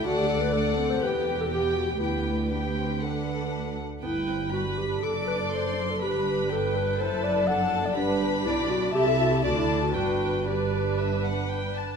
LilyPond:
<<
  \new Staff \with { instrumentName = "Violin section" } { \time 4/4 \key g \major \tempo 4 = 121 fis''4 fis''4 g''4 g''4 | g''4 g''4 fis''4. r8 | g''4 b''4 d'''4 c'''4 | b''8 b''8 g''4 a''4 a''4 |
b''2 a''4 a''4 | g''4 d''4 e''8 fis''8 g''8 a''8 | }
  \new Staff \with { instrumentName = "Violin section" } { \time 4/4 \key g \major d''2 g'2 | b'2.~ b'8 r8 | r2 d''2 | b'2 a'2 |
b'4 d''4 e''4 d''4 | b'2.~ b'8 r8 | }
  \new Staff \with { instrumentName = "Clarinet" } { \time 4/4 \key g \major fis'16 g'16 a'16 b'16 a'8. c''16 b'8. a'16 g'8 fis'16 g'16 | e'4 d'2~ d'8 r8 | e'4 fis'8 g'8 a'8 b'8 c''8. a'16 | g'4 a'8 b'8 c''8 d''8 fis''8. d''16 |
d'4 e'8 fis'8 g'16 a'16 fis'16 g'16 fis'16 e'8 fis'16 | fis'4 g'2 r4 | }
  \new Staff \with { instrumentName = "Viola section" } { \time 4/4 \key g \major << { a'4 a'4 g'4 g'4 | g'4 g'4 a'4. r8 | b'4 b'4 a'2 | b'4 b'2 a'4 |
g'2 a'4 a'4 | b'4 b'2~ b'8 r8 | } \\ { d'4 d'8 c'8 b4 b4 | b4 b8 c'8 d'4. r8 | b8 c'8 d'2.~ | d'2 e'4 d'4 |
d'2 e'4 d'4 | d'4 d'2~ d'8 r8 | } >> }
  \new Staff \with { instrumentName = "Cello section" } { \clef bass \time 4/4 \key g \major d,2 e,2 | d,2.~ d,8 r8 | g,2 fis,2 | g,2 fis,2 |
g,4 b,4 c4 d4 | g,2.~ g,8 r8 | }
  \new Staff \with { instrumentName = "Double bass section" } { \clef bass \time 4/4 \key g \major d,2 e,,2 | d,2.~ d,8 r8 | g,,2 fis,,2 | g,,2 fis,,2 |
g,,4 b,,4 c,4 d,4 | g,,2.~ g,,8 r8 | }
>>